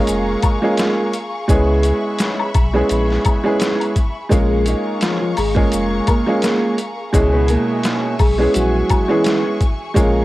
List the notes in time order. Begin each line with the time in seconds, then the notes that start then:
Already playing: G#3 A#3 C#4 F4 G#4 F5 A#5 C#6
0.07 F1, closed hi-hat, maracas
0.42 kick, closed hi-hat, high woodblock, maracas
0.62 G#3 A#3 C#4 F4 G#4
0.77 snare, closed hi-hat, maracas
1.13 closed hi-hat, maracas
1.48 C#2 G#3 B3 C#4 E4 G#4 E5 B5, kick, closed hi-hat, maracas
1.83 closed hi-hat, maracas
2.19 snare, closed hi-hat, maracas
2.39 high woodblock
2.54 B1, kick, closed hi-hat, high woodblock, maracas
2.74 G#3 B3 C#4 E4 G#4
2.89 A#1, closed hi-hat, maracas
3.10 snare
3.25 kick, closed hi-hat, high woodblock, maracas
3.44 G#3 B3 C#4 E4 G#4
3.60 snare, closed hi-hat, maracas
3.80 closed hi-hat, high woodblock
3.96 kick, closed hi-hat, maracas
4.29 A#1 G#3 A#3 C#4 F4 G#4 F5 A#5 C#6, kick, closed hi-hat, maracas
4.66 D#4 D#5, closed hi-hat, maracas
5.01 F3 F4, snare, closed hi-hat, maracas
5.21 F3 F4
5.37 G#1 G#3 G#4, open hi-hat, high woodblock, maracas
5.55 G#3 A#3 C#4 F4 G#4, kick
5.72 F1, closed hi-hat, maracas
6.07 A#3 A#4, kick, closed hi-hat, high woodblock, maracas
6.27 G#3 A#3 C#4 F4 G#4
6.42 A#3 A#4, snare, closed hi-hat, maracas
6.78 closed hi-hat, maracas
7.12 C#2 B2 G#3 C#4 E4 G#4 E5 G#5 C#6, kick, closed hi-hat, maracas
7.33 B3 B4
7.48 A#3 A#4, closed hi-hat, maracas
7.83 snare, closed hi-hat, maracas
8.19 B1 G#3 G#4, kick, open hi-hat, high woodblock, maracas
8.38 G#3 B3 C#4 E4 G#4
8.54 A#1 F#3 F#4, closed hi-hat, maracas
8.90 kick, closed hi-hat, high woodblock, maracas
9.08 E3 G#3 B3 C#4 E4 G#4
9.24 snare, closed hi-hat, maracas
9.61 kick, closed hi-hat, maracas
9.94 A#1 G#3 A#3 C#4 F4 G#4 A#5, kick, closed hi-hat, maracas
9.98 F5